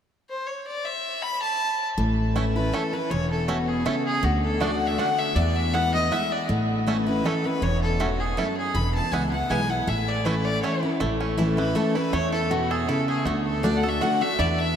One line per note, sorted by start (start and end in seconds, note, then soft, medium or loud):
0.29 0.48 C5 medium
0.47 0.67 C#5 medium
0.67 0.87 D5 medium
0.85 1.24 E5 medium
1.22 1.41 B5 loud
1.42 1.85 A5 medium
1.98 2.71 A1 medium
1.98 2.69 A2 medium
2.35 2.55 E3 medium
2.35 2.44 A3 medium
2.35 2.55 A3 medium
2.35 2.44 C#4 medium
2.35 2.55 C#4 medium
2.35 2.44 E4 medium
2.35 2.55 E4 medium
2.56 2.73 C#4 soft
2.56 2.72 E4 medium
2.56 2.75 B4 medium
2.73 2.92 E3 soft
2.73 2.92 A3 medium
2.73 2.82 A3 medium
2.73 2.93 C#4 medium
2.73 2.82 C#4 medium
2.73 2.82 E4 medium
2.73 2.92 E4 medium
2.73 2.95 A4 medium
2.93 3.10 C#4 soft
2.93 3.10 E4 medium
2.93 3.12 B4 medium
3.11 3.84 E1 medium
3.11 3.83 E2 loud
3.11 3.30 C#5 medium
3.30 3.49 A4 medium
3.48 3.84 B2 medium
3.48 3.57 A3 medium
3.48 3.57 C#4 medium
3.48 3.57 E4 medium
3.48 3.69 F#4 medium
3.67 3.87 G#4 medium
3.85 4.22 C#3 medium
3.85 3.95 A3 medium
3.85 3.95 C#4 medium
3.85 3.95 E4 medium
3.85 4.05 A4 medium
4.06 4.25 G#4 medium
4.23 4.96 D2 medium
4.23 4.59 D3 medium
4.23 4.43 F#4 medium
4.44 4.63 A4 medium
4.60 4.96 D3 medium
4.60 4.70 A3 medium
4.60 4.97 A3 medium
4.60 4.70 D4 medium
4.60 4.97 D4 medium
4.60 4.70 F#4 medium
4.60 4.98 F#4 medium
4.60 4.76 D5 medium
4.75 4.88 F#5 medium
4.87 5.00 E5 medium
4.98 5.34 D3 medium
4.98 5.08 A3 medium
4.98 5.35 A3 medium
4.98 5.08 D4 medium
4.98 5.35 D4 medium
4.98 5.08 F#4 medium
4.98 5.35 F#4 medium
4.98 5.20 F#5 loud
5.18 5.37 E5 medium
5.36 6.09 E2 medium
5.36 6.08 E2 medium
5.36 5.58 D5 medium
5.56 5.75 E5 medium
5.73 5.93 E3 medium
5.73 5.93 G#3 medium
5.73 5.83 B3 medium
5.73 5.94 B3 medium
5.73 5.77 E4 medium
5.73 5.92 E4 medium
5.73 5.93 F#5 loud
5.93 6.11 B3 soft
5.93 6.10 E4 medium
5.93 6.13 D#5 medium
6.11 6.47 E3 medium
6.11 6.47 G#3 medium
6.11 6.21 B3 medium
6.11 6.48 B3 medium
6.11 6.14 E4 medium
6.11 6.48 E4 medium
6.11 6.33 E5 medium
6.32 6.49 D5 medium
6.49 7.23 A1 medium
6.49 7.21 A2 medium
6.87 7.06 E3 medium
6.87 7.06 A3 medium
6.87 6.96 A3 medium
6.87 7.07 C#4 medium
6.87 6.96 C#4 medium
6.87 6.96 E4 medium
6.87 7.05 E4 medium
7.06 7.24 C#4 medium
7.06 7.24 E4 medium
7.06 7.27 B4 medium
7.24 7.44 E3 medium
7.24 7.44 A3 medium
7.24 7.34 A3 medium
7.24 7.44 C#4 medium
7.24 7.34 C#4 medium
7.24 7.34 E4 medium
7.24 7.47 A4 medium
7.44 7.62 C#4 medium
7.44 7.61 E4 medium
7.44 7.64 B4 medium
7.62 8.35 E1 medium
7.62 7.99 E2 medium
7.62 7.82 C#5 loud
7.82 8.01 A4 medium
8.00 8.36 G#2 medium
8.00 8.09 A3 medium
8.00 8.09 C#4 medium
8.00 8.09 E4 medium
8.00 8.21 F#4 medium
8.20 8.39 G#4 medium
8.37 8.73 F#2 medium
8.37 8.47 A3 medium
8.37 8.47 C#4 medium
8.37 8.47 E4 medium
8.37 8.56 A4 medium
8.57 8.76 G#4 medium
8.75 8.99 E1 medium
8.75 9.47 E2 medium
8.75 8.94 B5 medium
8.95 9.13 A5 medium
9.12 9.44 C#2 medium
9.12 9.31 E3 medium
9.12 9.32 G#3 medium
9.12 9.32 B3 medium
9.12 9.22 B3 medium
9.12 9.16 E4 medium
9.12 9.31 E4 medium
9.12 9.31 G#5 medium
9.32 9.50 B3 soft
9.32 9.49 E4 medium
9.32 9.51 F#5 medium
9.49 9.82 B1 medium
9.49 9.69 E3 medium
9.49 9.69 G#3 medium
9.49 9.59 B3 medium
9.49 9.70 B3 medium
9.49 9.53 E4 medium
9.49 9.69 E4 medium
9.49 9.71 G#5 loud
9.69 9.88 B3 soft
9.69 9.87 E4 medium
9.69 9.89 F#5 medium
9.88 10.61 A1 loud
9.88 10.59 A2 medium
9.88 10.09 E5 medium
10.08 10.26 D5 medium
10.25 10.61 E3 medium
10.25 10.61 A3 medium
10.25 10.34 A3 medium
10.25 10.35 C#4 medium
10.25 10.62 C#4 medium
10.25 10.35 E4 medium
10.25 10.62 E4 medium
10.25 10.46 B4 medium
10.45 10.62 D5 loud
10.63 10.82 E3 medium
10.63 10.72 A3 medium
10.63 10.83 A3 medium
10.63 10.72 C#4 medium
10.63 10.83 C#4 medium
10.63 10.72 E4 medium
10.63 10.81 E4 medium
10.63 10.90 C#5 medium
10.83 11.01 C#4 soft
10.83 11.00 E4 medium
11.00 11.74 A1 medium
11.00 11.72 A2 loud
11.00 11.75 A3 medium
11.21 11.72 C#4 medium
11.38 11.57 E3 medium
11.38 11.57 A3 medium
11.38 11.58 C#4 medium
11.38 11.92 E4 medium
11.38 11.56 E4 medium
11.57 12.10 E3 medium
11.57 11.75 C#4 soft
11.57 11.74 E4 medium
11.57 11.77 B4 medium
11.75 11.95 E3 medium
11.75 12.13 A3 medium
11.75 11.95 A3 medium
11.75 11.95 C#4 medium
11.75 11.94 E4 medium
11.75 11.97 A4 medium
11.95 12.13 C#4 medium
11.95 12.31 E4 medium
11.95 12.12 E4 medium
11.95 12.15 B4 medium
12.13 12.85 E2 medium
12.13 12.86 E2 medium
12.13 12.50 A3 medium
12.13 12.32 C#5 loud
12.32 12.85 E4 medium
12.32 12.52 A4 medium
12.50 12.87 B2 medium
12.50 13.05 A3 medium
12.50 12.72 F#4 medium
12.71 12.89 G#4 medium
12.71 13.23 A4 medium
12.88 13.25 C#3 medium
12.88 13.26 E4 medium
12.88 13.08 A4 medium
13.08 13.24 A3 medium
13.08 13.27 G#4 medium
13.25 13.99 D2 medium
13.25 13.62 D3 medium
13.25 13.80 A3 medium
13.25 13.45 F#4 medium
13.46 13.65 A4 medium
13.63 13.83 D3 medium
13.63 13.83 A3 loud
13.63 14.18 D4 medium
13.63 13.84 D4 medium
13.63 13.82 F#4 loud
13.63 13.78 D5 medium
13.77 13.90 F#5 medium
13.83 14.02 D4 medium
13.83 14.01 F#4 medium
13.83 14.35 A4 medium
13.89 14.03 E5 medium
14.01 14.21 D3 medium
14.01 14.21 A3 medium
14.01 14.21 D4 medium
14.01 14.38 F#4 medium
14.01 14.20 F#4 medium
14.01 14.23 F#5 medium
14.21 14.39 A3 medium
14.21 14.39 D4 soft
14.21 14.38 F#4 medium
14.21 14.41 E5 loud
14.39 14.76 E2 medium
14.39 14.76 E4 medium
14.39 14.60 D5 medium
14.59 14.76 E5 medium